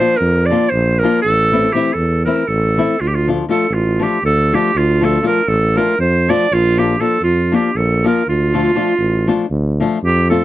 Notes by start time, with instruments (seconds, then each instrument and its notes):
Already playing: clarinet C5
0.00 nylon-string guitar F3 A#3 D4 F4
0.17 clarinet A#4
0.21 tuba F2
0.46 clarinet D5
0.50 nylon-string guitar F3 A#3 D4 F4
0.69 clarinet C5
0.73 tuba A#1
0.99 nylon-string guitar F3, clarinet A#4
1.03 nylon-string guitar A#3 D4 F4
1.22 tuba A1, clarinet A4
1.52 nylon-string guitar E3 A3 C4 E4
1.73 nylon-string guitar E3 A3 C4 E4, clarinet G4
1.94 tuba E2, clarinet A4
2.25 nylon-string guitar E3 A3 C4 E4, clarinet A#4
2.47 tuba A1, clarinet A4
2.77 nylon-string guitar E3 A3 C4 E4
3.00 tuba D2, clarinet F4
3.08 clarinet G4
3.15 clarinet F4
3.27 nylon-string guitar F3 A3 D4 F4
3.49 nylon-string guitar F3 A3 D4 F4, clarinet A4
3.70 tuba A1, clarinet F4
3.99 nylon-string guitar F3 A3 D4 F4, clarinet G4
4.23 tuba D2, clarinet A4
4.53 nylon-string guitar F3 A3 D4 F4, clarinet G4
4.75 tuba D2, clarinet F4
5.01 nylon-string guitar F3 A3 D4 F4
5.05 clarinet A4
5.22 nylon-string guitar F3 A3 D4 F4, clarinet A#4
5.47 tuba A1, clarinet A4
5.76 nylon-string guitar F3 A3 D4 F4, clarinet A#4
5.98 tuba F2, clarinet C5
6.28 nylon-string guitar F3 A3 D4 F4, clarinet D5
6.52 tuba A#1, clarinet F4
6.77 nylon-string guitar F3 A#3 D4 F4, clarinet G4
7.00 nylon-string guitar F3 A#3 D4 F4, clarinet A4
7.22 tuba F2, clarinet F4
7.52 nylon-string guitar F3 A#3 D4 F4, clarinet G4
7.75 tuba A#1, clarinet A4
8.04 nylon-string guitar F3 A#3 D4 F4, clarinet A#4
8.28 tuba D2, clarinet F4
8.53 nylon-string guitar F3 A3 D4 F4
8.75 nylon-string guitar F3 A3 D4 F4
8.98 tuba A1
9.27 nylon-string guitar F3 A3 D4 F4
9.50 tuba D2
9.80 nylon-string guitar F3 A3 D4 F4
10.03 tuba F2, clarinet G4
10.30 nylon-string guitar F3 A3 C4 F4, clarinet A4